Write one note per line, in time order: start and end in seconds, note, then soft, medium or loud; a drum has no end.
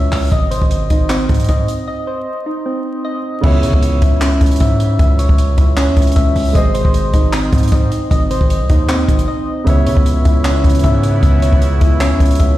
0.00 0.12 C#2 loud
0.00 0.32 C#4 loud
0.00 0.32 E4 medium
0.00 0.12 C#5 medium
0.00 0.32 E5 loud
0.12 0.31 C#2 loud
0.12 clap medium
0.12 open hi-hat medium
0.32 0.60 G#1 loud
0.32 1.47 D#5 loud
0.32 kick loud
0.32 closed hi-hat medium
0.51 1.68 C5 medium
0.51 closed hi-hat medium
0.62 0.89 G#1 loud
0.62 kick medium
0.71 closed hi-hat medium
0.90 1.28 G#1 loud
0.90 2.07 D#4 medium
0.90 kick loud
0.90 closed hi-hat medium
1.10 2.27 C4 medium
1.10 clap loud
1.10 closed hi-hat medium
1.29 1.48 G#2 loud
1.29 kick loud
1.29 closed hi-hat medium
1.34 closed hi-hat medium
1.40 closed hi-hat medium
1.44 closed hi-hat medium
1.49 1.67 G#2 loud
1.49 1.86 D#5 medium
1.49 kick medium
1.49 closed hi-hat medium
1.68 closed hi-hat medium
1.88 3.03 D#5 loud
2.07 3.24 C5 medium
2.46 3.44 D#4 medium
2.66 3.44 C4 medium
3.05 3.44 D#5 loud
3.41 3.65 C#2 loud
3.41 6.50 C#3 medium
3.41 6.51 B3 medium
3.41 6.52 E4 medium
3.41 4.59 E5 loud
3.41 kick loud
3.41 crash loud
3.46 6.53 C#5 medium
3.63 3.73 C#3 loud
3.63 4.80 C#5 medium
3.63 closed hi-hat medium
3.73 4.01 C#2 loud
3.73 kick medium
3.83 closed hi-hat medium
4.02 4.39 C#2 loud
4.02 5.19 E4 medium
4.02 kick loud
4.02 closed hi-hat medium
4.21 5.38 C#4 medium
4.21 clap loud
4.21 closed hi-hat medium
4.41 4.60 C#2 loud
4.41 kick loud
4.41 closed hi-hat medium
4.46 closed hi-hat medium
4.51 closed hi-hat medium
4.56 closed hi-hat medium
4.60 4.98 G#2 loud
4.60 4.98 E5 loud
4.60 kick medium
4.60 closed hi-hat medium
4.80 closed hi-hat medium
4.99 5.28 C#2 loud
4.99 6.15 E5 loud
4.99 kick loud
4.99 closed hi-hat medium
5.19 6.36 C#5 medium
5.19 closed hi-hat medium
5.29 5.57 C#2 loud
5.29 kick loud
5.38 closed hi-hat medium
5.57 5.89 C#2 loud
5.57 6.55 E4 medium
5.57 kick loud
5.57 closed hi-hat medium
5.77 6.55 C#4 loud
5.77 clap loud
5.77 closed hi-hat medium
5.88 5.96 E2 loud
5.97 6.15 C#2 loud
5.97 kick loud
5.97 closed hi-hat medium
6.02 closed hi-hat medium
6.07 closed hi-hat medium
6.12 closed hi-hat medium
6.16 6.35 C#2 loud
6.16 6.55 E5 loud
6.16 kick medium
6.16 closed hi-hat medium
6.36 6.54 C#2 loud
6.36 open hi-hat medium
6.53 6.84 G#1 loud
6.53 9.62 G#3 medium
6.53 9.62 G#4 medium
6.53 9.63 C5 medium
6.53 7.71 D#5 loud
6.53 kick loud
6.53 closed hi-hat medium
6.58 9.64 D#5 medium
6.74 7.91 C5 loud
6.74 closed hi-hat medium
6.85 7.12 G#1 loud
6.85 kick medium
6.94 closed hi-hat medium
7.13 7.51 G#1 loud
7.13 8.30 D#4 medium
7.13 kick loud
7.13 closed hi-hat medium
7.33 8.50 C4 loud
7.33 clap loud
7.33 closed hi-hat medium
7.53 7.71 G#2 loud
7.53 kick loud
7.53 closed hi-hat medium
7.58 closed hi-hat medium
7.63 closed hi-hat medium
7.68 closed hi-hat medium
7.72 7.91 G#2 loud
7.72 8.10 D#5 loud
7.72 kick medium
7.72 closed hi-hat medium
7.92 closed hi-hat medium
8.11 8.40 G#1 loud
8.11 9.27 D#5 loud
8.11 kick loud
8.11 closed hi-hat medium
8.31 9.47 C5 medium
8.31 closed hi-hat medium
8.41 8.62 G#1 loud
8.41 kick medium
8.50 closed hi-hat medium
8.60 8.69 C2 loud
8.69 9.07 D#2 loud
8.69 9.67 D#4 medium
8.69 kick loud
8.69 closed hi-hat medium
8.89 9.67 C4 medium
8.89 clap loud
8.89 closed hi-hat medium
9.08 9.27 G#1 loud
9.08 kick loud
9.08 closed hi-hat medium
9.19 closed hi-hat medium
9.28 9.67 D#5 loud
9.64 9.88 C#2 loud
9.64 12.58 C#3 medium
9.64 12.58 B3 medium
9.64 12.58 E4 medium
9.64 10.83 E5 loud
9.64 kick loud
9.64 closed hi-hat medium
9.70 12.58 C#5 medium
9.86 9.96 C#3 loud
9.86 11.03 C#5 medium
9.86 closed hi-hat medium
9.97 10.24 C#2 loud
9.97 kick medium
10.06 closed hi-hat medium
10.25 10.63 C#2 loud
10.25 11.42 E4 medium
10.25 kick loud
10.25 closed hi-hat medium
10.45 11.62 C#4 medium
10.45 clap loud
10.45 closed hi-hat medium
10.64 10.83 C#2 loud
10.64 kick loud
10.64 closed hi-hat medium
10.70 closed hi-hat medium
10.75 closed hi-hat medium
10.79 closed hi-hat medium
10.84 11.21 G#2 loud
10.84 11.22 E5 loud
10.84 kick medium
10.84 closed hi-hat medium
11.03 closed hi-hat medium
11.23 11.51 C#2 loud
11.23 12.38 E5 loud
11.23 kick loud
11.23 closed hi-hat medium
11.42 12.58 C#5 medium
11.42 closed hi-hat medium
11.53 11.80 C#2 loud
11.53 kick medium
11.62 closed hi-hat medium
11.81 12.13 C#2 loud
11.81 12.58 E4 medium
11.81 kick loud
11.81 closed hi-hat medium
12.00 12.58 C#4 loud
12.00 clap loud
12.00 closed hi-hat medium
12.11 12.20 E2 loud
12.20 12.39 C#2 loud
12.20 kick loud
12.20 closed hi-hat medium
12.25 closed hi-hat medium
12.31 closed hi-hat medium
12.35 closed hi-hat medium
12.39 12.58 C#2 loud
12.39 12.58 E5 loud
12.39 kick medium
12.39 closed hi-hat medium